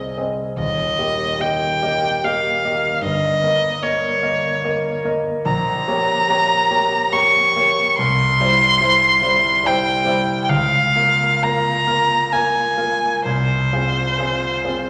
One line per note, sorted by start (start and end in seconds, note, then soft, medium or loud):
0.00 0.60 C2 soft
0.00 0.17 C4 soft
0.00 0.18 G#4 soft
0.00 0.18 D#5 medium
0.00 0.18 D#5 soft
0.17 0.54 C4 soft
0.17 0.54 G#4 soft
0.17 0.55 D#5 soft
0.57 0.97 D#1 medium
0.57 0.97 D#2 medium
0.57 1.42 D#5 medium
0.99 1.36 A#3 soft
0.99 1.36 G4 soft
0.99 1.37 D#5 medium
1.39 1.78 A#3 soft
1.39 1.78 G4 soft
1.39 1.78 D#5 soft
1.39 2.26 G5 medium
1.82 2.20 A#3 soft
1.82 2.20 G4 soft
1.82 2.20 D#5 medium
2.24 2.60 A#3 soft
2.24 2.60 G4 soft
2.24 2.60 D#5 soft
2.24 3.03 F5 medium
2.64 3.00 A#3 soft
2.64 3.00 G4 soft
2.64 3.00 D#5 medium
3.02 3.41 G1 medium
3.02 3.41 G2 medium
3.02 3.84 D#5 medium
3.43 3.78 A#3 soft
3.43 3.79 A#4 soft
3.43 3.79 D#5 medium
3.82 4.19 A#3 soft
3.82 4.19 A#4 soft
3.82 5.04 C#5 medium
3.82 4.19 D#5 soft
4.23 4.60 A#3 medium
4.23 4.60 A#4 medium
4.23 4.60 D#5 medium
4.64 5.01 A#3 soft
4.64 5.01 A#4 soft
4.64 5.01 D#5 medium
5.04 5.41 A#3 soft
5.04 5.42 A#4 soft
5.04 5.42 D#5 medium
5.46 5.86 A#1 medium
5.46 7.14 A#5 loud
5.88 6.25 A#3 medium
5.88 6.25 G4 medium
5.88 6.25 C#5 medium
6.29 6.66 A#3 medium
6.29 6.66 G4 medium
6.29 6.67 C#5 medium
6.70 7.09 A#3 medium
6.70 7.09 G4 medium
6.70 7.09 C#5 medium
7.12 7.51 A#3 medium
7.12 7.52 G4 medium
7.12 7.51 C#5 medium
7.12 7.97 C#6 loud
7.56 7.94 A#3 medium
7.56 7.94 G4 soft
7.56 7.95 C#5 medium
7.98 8.39 C2 medium
7.98 9.67 C6 loud
8.40 8.78 G3 medium
8.40 8.78 E4 medium
8.40 8.79 C5 medium
8.80 9.19 G3 medium
8.80 9.19 E4 medium
8.80 9.19 C5 medium
9.22 9.61 G3 medium
9.22 9.61 E4 medium
9.22 9.61 C5 medium
9.64 10.02 G3 medium
9.64 10.03 E4 medium
9.64 10.03 C5 medium
9.64 10.43 G5 loud
10.05 10.45 G3 medium
10.05 10.45 E4 medium
10.05 10.45 C5 medium
10.44 10.51 G5 medium
10.49 10.94 C#2 medium
10.49 11.45 F5 loud
10.95 11.39 A#3 medium
10.95 11.39 F4 medium
10.95 11.39 A#4 medium
11.42 11.84 A#3 soft
11.42 11.84 F4 soft
11.42 11.85 A#4 medium
11.42 12.34 A#5 loud
11.87 12.28 A#3 medium
11.87 12.29 F4 medium
11.87 12.29 A#4 medium
12.32 12.74 A#3 soft
12.32 12.75 F4 soft
12.32 12.75 A#4 medium
12.32 13.25 G#5 medium
12.77 13.21 A#3 soft
12.77 13.21 F4 medium
12.77 13.22 A#4 medium
13.25 13.71 C2 medium
13.25 14.90 C5 medium
13.73 14.15 C4 soft
13.73 14.15 F4 soft
13.73 14.15 G#4 medium
14.19 14.60 C4 soft
14.19 14.61 F4 soft
14.19 14.61 G#4 soft
14.65 14.90 C4 soft
14.65 14.90 F4 medium
14.65 14.90 G#4 medium